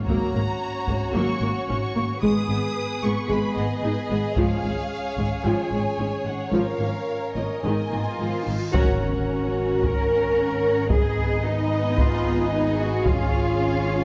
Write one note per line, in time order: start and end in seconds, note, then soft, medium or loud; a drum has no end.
0.06 0.15 G#1 medium
0.06 0.15 G#2 medium
0.06 0.32 F#3 soft
0.06 0.33 A#3 medium
0.06 2.17 C#4 medium
0.06 2.17 F#4 medium
0.06 2.18 F#4 medium
0.06 2.18 C#5 medium
0.06 1.10 A#5 medium
0.06 taiko soft
0.34 0.42 G#1 soft
0.34 0.42 G#2 soft
0.34 0.43 A#3 soft
0.87 0.95 G#1 soft
0.87 0.95 G#2 soft
0.87 0.96 A#3 soft
0.87 taiko soft
1.14 1.22 G#1 medium
1.14 1.22 G#2 medium
1.14 1.39 F#3 medium
1.14 1.39 A#3 medium
1.14 1.67 C#6 medium
1.40 1.50 G#1 soft
1.40 1.48 G#2 soft
1.40 1.50 A#3 soft
1.67 1.78 G#1 soft
1.67 1.75 G#2 soft
1.67 1.76 A#3 soft
1.67 1.77 C#4 soft
1.67 2.21 C#6 medium
1.94 2.03 G#1 soft
1.94 2.02 G#2 soft
1.94 2.03 A#3 soft
2.21 2.31 G#1 medium
2.21 2.29 G#2 medium
2.21 2.47 G#3 medium
2.21 4.33 B3 soft
2.21 6.34 G#4 soft
2.21 6.52 G#4 medium
2.21 4.33 B4 medium
2.21 3.02 D#6 medium
2.48 2.57 G#1 soft
2.48 2.56 G#2 soft
2.48 2.57 G#3 soft
2.48 2.57 B3 soft
3.02 3.11 G#1 soft
3.02 3.10 G#2 soft
3.02 3.11 G#3 soft
3.02 3.11 B3 soft
3.02 3.30 C#6 medium
3.28 3.37 G#1 medium
3.28 3.36 G#2 medium
3.28 3.54 G#3 medium
3.28 3.57 B5 medium
3.55 3.65 G#1 soft
3.55 3.63 G#2 soft
3.55 3.64 G#3 soft
3.55 3.64 B3 soft
3.55 4.35 D#5 medium
3.82 3.91 G#1 soft
3.82 3.90 G#2 soft
3.82 3.91 G#3 soft
3.82 3.92 D#4 soft
4.10 4.18 G#1 soft
4.10 4.18 G#2 soft
4.10 4.18 G#3 soft
4.10 4.18 B3 soft
4.35 4.44 G#1 medium
4.35 4.45 G#2 medium
4.35 4.62 F3 medium
4.35 4.62 G#3 medium
4.35 7.59 C#4 soft
4.35 7.59 C#5 medium
4.35 5.44 F5 medium
4.35 taiko soft
4.63 4.72 G#1 soft
4.63 4.71 G#2 soft
4.63 4.72 G#3 soft
5.17 5.26 G#1 soft
5.17 5.25 G#2 soft
5.17 5.26 G#3 soft
5.17 taiko soft
5.44 5.53 G#1 medium
5.44 5.52 G#2 medium
5.44 5.70 F3 medium
5.44 5.69 G#3 medium
5.44 6.25 G#5 medium
5.71 5.79 G#1 soft
5.71 5.79 G#2 soft
5.71 5.80 G#3 soft
5.97 6.07 G#1 soft
5.97 6.05 G#2 soft
5.97 6.06 G#3 soft
5.97 6.06 C#4 soft
6.24 6.33 G#1 soft
6.24 6.32 G#2 soft
6.24 6.33 G#3 soft
6.24 6.52 F#5 medium
6.51 6.60 G#1 medium
6.51 6.59 G#2 medium
6.51 6.78 F3 soft
6.51 8.42 A#4 soft
6.51 8.50 A#4 soft
6.51 7.33 F5 medium
6.51 reverse cymbal medium
6.78 6.88 G#1 soft
6.78 6.86 G#2 soft
6.78 6.88 F3 soft
6.78 6.88 A#3 soft
7.34 7.43 G#1 soft
7.34 7.43 G#2 soft
7.34 7.43 F3 soft
7.34 7.44 A#3 soft
7.34 7.62 D#5 soft
7.62 7.72 G#1 soft
7.62 7.71 G#2 medium
7.62 7.90 D#3 soft
7.62 7.90 G#3 soft
7.62 8.47 B3 soft
7.62 8.54 D#5 soft
7.62 8.46 G#5 medium
7.91 8.00 G#1 soft
7.91 8.00 G#2 soft
7.91 7.99 D#3 soft
7.91 7.99 A#3 soft
7.91 8.70 F4 medium
8.18 8.28 G#1 soft
8.18 8.26 G#2 soft
8.18 8.44 F3 soft
8.45 8.55 G#1 soft
8.45 8.54 G#2 soft
8.45 8.73 D#3 soft
8.72 13.02 G#1 medium
8.72 10.86 C#4 medium
8.72 10.87 C#4 medium
8.72 9.78 F#4 medium
8.72 10.85 A#4 medium
8.72 10.87 A#4 medium
8.72 10.86 C#5 medium
8.72 10.87 C#5 medium
8.72 10.86 F#5 medium
8.72 10.86 A#5 medium
8.72 taiko medium
8.72 impact medium
9.81 10.90 A#4 medium
9.81 taiko medium
10.90 13.01 B3 soft
10.90 13.01 B3 medium
10.90 13.06 D#4 medium
10.90 11.43 G#4 medium
10.90 14.04 G#4 medium
10.90 13.06 B4 medium
10.90 13.02 D#5 medium
10.90 13.06 D#5 medium
10.90 14.04 G#5 medium
10.90 taiko medium
11.45 11.98 D#4 medium
11.98 12.52 F4 medium
11.98 taiko medium
12.51 12.78 D#4 medium
12.78 13.05 F#4 medium
13.04 14.04 G#1 medium
13.04 14.04 C#4 medium
13.04 14.04 F4 medium
13.04 14.04 C#5 medium
13.04 14.04 F5 medium
13.04 taiko medium